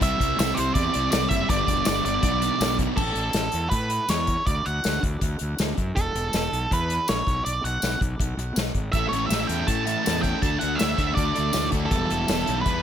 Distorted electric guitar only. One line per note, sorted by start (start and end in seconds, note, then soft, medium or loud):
0.01 0.36 C3 medium
0.01 0.20 G3 medium
0.01 0.19 C4 loud
0.01 0.17 E4 loud
0.18 0.37 G3 medium
0.18 0.38 C4 medium
0.18 0.38 E4 medium
0.37 0.75 C3 medium
0.37 0.58 G3 loud
0.37 0.56 C4 loud
0.37 0.54 E4 loud
0.56 0.95 G3 medium
0.56 0.94 C4 medium
0.56 0.93 E4 medium
0.94 1.12 G3 medium
0.94 1.13 C4 medium
0.94 1.13 E4 medium
1.13 1.49 C3 medium
1.13 1.49 G3 medium
1.13 1.50 C4 medium
1.13 1.50 E4 medium
1.48 1.85 G2 medium
1.48 1.85 D3 medium
1.48 1.69 G3 medium
1.48 1.68 B3 medium
1.48 1.66 D4 loud
1.67 1.87 G3 medium
1.67 1.87 B3 medium
1.67 1.87 D4 medium
1.86 2.22 G2 medium
1.86 2.22 D3 medium
1.86 2.07 G3 medium
1.86 2.06 B3 loud
1.86 2.04 D4 loud
2.05 2.23 G3 medium
2.05 2.23 B3 medium
2.05 2.23 D4 medium
2.22 2.60 B2 medium
2.22 2.43 F#3 medium
2.22 2.42 B3 medium
2.22 2.41 D4 medium
2.42 2.61 F#3 medium
2.42 2.61 B3 medium
2.42 2.63 D4 medium
2.62 2.98 B2 medium
2.62 2.98 F#3 medium
2.62 2.98 B3 medium
2.62 2.99 D4 medium
8.95 9.32 A2 medium
8.95 9.32 E3 medium
8.95 9.16 A3 medium
8.95 9.13 C#4 medium
8.95 9.13 E4 medium
8.95 9.12 A4 medium
9.13 9.30 A3 medium
9.13 9.31 C#4 medium
9.13 9.31 E4 medium
9.13 9.33 A4 medium
9.31 9.50 A3 medium
9.31 9.49 C#4 medium
9.31 9.48 E4 medium
9.31 9.48 A4 medium
9.49 9.87 A2 medium
9.49 9.85 E3 medium
9.49 9.66 A3 medium
9.49 9.66 C#4 medium
9.49 9.67 E4 medium
9.49 9.67 A4 medium
9.67 9.86 A3 medium
9.67 9.84 C#4 medium
9.67 9.84 E4 medium
9.67 9.84 A4 medium
9.85 10.25 A2 medium
9.85 10.24 E3 medium
9.85 10.02 A3 medium
9.85 10.03 C#4 medium
9.85 10.04 E4 medium
9.85 10.05 A4 medium
10.03 10.23 A3 medium
10.03 10.23 C#4 medium
10.03 10.22 E4 medium
10.03 10.21 A4 medium
10.22 10.40 A3 medium
10.22 10.42 C#4 medium
10.22 10.42 E4 medium
10.22 10.41 A4 medium
10.41 10.79 D3 medium
10.41 10.77 A3 medium
10.41 10.61 D4 medium
10.41 10.60 F#4 medium
10.41 10.58 A4 medium
10.59 10.79 D4 medium
10.59 10.79 F#4 medium
10.59 10.80 A4 medium
10.79 10.97 A3 medium
10.79 10.96 D4 medium
10.79 10.96 F#4 medium
10.79 10.95 A4 medium
10.96 11.36 D3 medium
10.96 11.14 A3 medium
10.96 11.15 D4 medium
10.96 11.15 F#4 medium
10.96 11.16 A4 medium
11.16 11.36 A3 medium
11.16 11.35 D4 medium
11.16 11.35 F#4 medium
11.16 11.34 A4 medium
11.35 11.74 D3 medium
11.35 11.52 A3 medium
11.35 11.53 D4 medium
11.35 11.54 F#4 medium
11.35 11.55 A4 medium
11.53 11.90 A3 medium
11.53 11.73 D4 medium
11.53 11.72 F#4 medium
11.53 11.71 A4 medium
11.72 11.91 D4 medium
11.72 11.91 F#4 medium
11.72 11.90 A4 medium
11.90 12.27 E3 medium
11.90 12.10 G3 medium
11.90 12.08 B3 medium
11.90 12.08 E4 medium
12.09 12.28 G3 medium
12.09 12.28 B3 medium
12.09 12.29 E4 medium
12.28 12.48 E3 medium
12.28 12.47 G3 medium
12.28 12.46 B3 medium
12.28 12.45 E4 medium
12.46 12.63 E3 medium
12.46 12.64 G3 medium
12.46 12.66 B3 medium
12.46 12.66 E4 medium
12.65 12.82 E3 medium
12.65 12.82 G3 medium
12.65 12.82 B3 medium
12.65 12.82 E4 medium